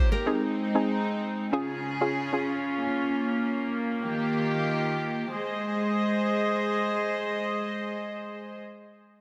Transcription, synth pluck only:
0, 0, Header, 1, 2, 480
1, 0, Start_track
1, 0, Key_signature, -4, "major"
1, 0, Tempo, 500000
1, 8841, End_track
2, 0, Start_track
2, 0, Title_t, "Synth pluck"
2, 0, Program_c, 0, 84
2, 252, Note_on_c, 0, 60, 95
2, 255, Note_on_c, 0, 63, 86
2, 258, Note_on_c, 0, 68, 98
2, 414, Note_off_c, 0, 60, 0
2, 415, Note_off_c, 0, 63, 0
2, 417, Note_off_c, 0, 68, 0
2, 718, Note_on_c, 0, 60, 80
2, 720, Note_on_c, 0, 63, 71
2, 723, Note_on_c, 0, 68, 91
2, 860, Note_off_c, 0, 60, 0
2, 862, Note_off_c, 0, 63, 0
2, 863, Note_off_c, 0, 68, 0
2, 1466, Note_on_c, 0, 61, 96
2, 1469, Note_on_c, 0, 65, 84
2, 1472, Note_on_c, 0, 68, 100
2, 1627, Note_off_c, 0, 61, 0
2, 1628, Note_off_c, 0, 65, 0
2, 1630, Note_off_c, 0, 68, 0
2, 1929, Note_on_c, 0, 61, 77
2, 1932, Note_on_c, 0, 65, 68
2, 1935, Note_on_c, 0, 68, 83
2, 2072, Note_off_c, 0, 61, 0
2, 2074, Note_off_c, 0, 65, 0
2, 2075, Note_off_c, 0, 68, 0
2, 2234, Note_on_c, 0, 61, 78
2, 2236, Note_on_c, 0, 65, 68
2, 2239, Note_on_c, 0, 68, 86
2, 2376, Note_off_c, 0, 61, 0
2, 2378, Note_off_c, 0, 65, 0
2, 2379, Note_off_c, 0, 68, 0
2, 8841, End_track
0, 0, End_of_file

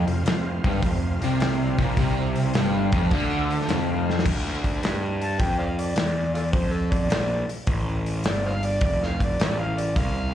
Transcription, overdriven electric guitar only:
0, 0, Header, 1, 2, 480
1, 0, Start_track
1, 0, Key_signature, -1, "minor"
1, 0, Tempo, 570885
1, 1650, Time_signature, 4, 2, 24, 8
1, 8694, End_track
2, 0, Start_track
2, 0, Title_t, "Overdriven electric guitar"
2, 0, Program_c, 0, 29
2, 60, Note_on_c, 0, 41, 68
2, 181, Note_off_c, 0, 41, 0
2, 229, Note_on_c, 0, 41, 68
2, 479, Note_off_c, 0, 41, 0
2, 548, Note_on_c, 0, 43, 87
2, 692, Note_off_c, 0, 43, 0
2, 700, Note_on_c, 0, 41, 68
2, 955, Note_off_c, 0, 41, 0
2, 1042, Note_on_c, 0, 48, 91
2, 1499, Note_off_c, 0, 48, 0
2, 1506, Note_on_c, 0, 46, 98
2, 1651, Note_off_c, 0, 46, 0
2, 1667, Note_on_c, 0, 48, 99
2, 2135, Note_off_c, 0, 48, 0
2, 2143, Note_on_c, 0, 43, 92
2, 2452, Note_off_c, 0, 43, 0
2, 2471, Note_on_c, 0, 41, 92
2, 2614, Note_off_c, 0, 41, 0
2, 2627, Note_on_c, 0, 50, 97
2, 3095, Note_off_c, 0, 50, 0
2, 3098, Note_on_c, 0, 41, 101
2, 3570, Note_off_c, 0, 41, 0
2, 8694, End_track
0, 0, End_of_file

